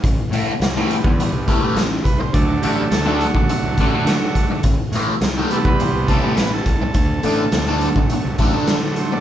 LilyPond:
<<
  \new Staff \with { instrumentName = "Transistor combo organ" } { \time 4/4 \key a \dorian \tempo 4 = 104 r2. r8 b'16 c''16 | d''8 g'8 a'16 fis'2~ fis'8 r16 | r4. a'16 b'16 c''8 a'8 b'16 a'8.~ | a'4.~ a'16 r4. r16 c''16 d''16 | }
  \new Staff \with { instrumentName = "Transistor combo organ" } { \clef bass \time 4/4 \key a \dorian r4. <c g b>4. r4 | <d fis a>1 | r4. <c g b>4. r4 | r4. <d fis a>2~ <d fis a>8 | }
  \new Staff \with { instrumentName = "Distorted electric guitar" } { \clef bass \time 4/4 \key a \dorian r8 <a, e a>16 r8 <a, e a>16 r4 <a, e a>16 <a, e a>16 r4 | r8 <d a d'>16 r8 <d a d'>16 r4 <d a d'>16 <d a d'>16 r4 | r8 <a, e a>16 r8 <a, e a>16 r4 <a, e a>16 <a, e a>16 r4 | r8 <d a d'>16 r8 <d a d'>16 r4 <d a d'>16 <d a d'>16 r4 | }
  \new Staff \with { instrumentName = "Picked electric bass" } { \clef bass \time 4/4 \key a \dorian a,,16 r16 a,16 r16 c,8 r16 e,8 c,8 r16 a,,8 c,8 | d,8 a,,8 d,8. a,,16 r16 c,16 a,,16 r16 d8 r8 | a,,16 r16 a,16 r16 c,8 r16 e,8 c,8 r16 a,,8 c,8 | d,8 a,,8 d,8. a,,16 r16 c,16 a,,16 r16 d8 r8 | }
  \new DrumStaff \with { instrumentName = "Drums" } \drummode { \time 4/4 <hh bd>8 hh8 <hh sn>8 hh16 bd16 hh8 <hh bd>8 <hh sn>8 <hh bd>8 | <hh bd>8 hh8 <hh sn>8 hh16 bd16 hh8 <hh bd>8 <hh sn>8 <hh bd>8 | <hh bd>8 hh8 <hh sn>8 hh16 bd16 hh8 <hh bd>8 <hh sn>8 <hh bd>8 | <hh bd>8 hh8 <hh sn>8 hh16 bd16 hh8 <hh bd>8 <hh sn>8 hh8 | }
>>